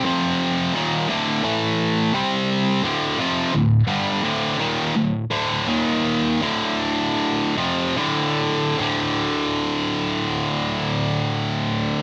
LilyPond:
\new Staff \with { instrumentName = "Distorted electric guitar" } { \clef bass \time 4/4 \key d \minor \tempo 4 = 82 <f, c f>4 <ees, bes, ees>8 <d, a, d>8 <a, e a>4 <c g c'>4 | <d, a, d>8 <f, c f>8 <d, a,>8 <g, d g>8 <d, a, d>8 <ees, bes, ees>8 <d, a,>8 <d, a, d>8 | <ees, bes, ees>4 <d, a, d>4. <f, c f>8 <d, a, d>4 | <d, a, d>1 | }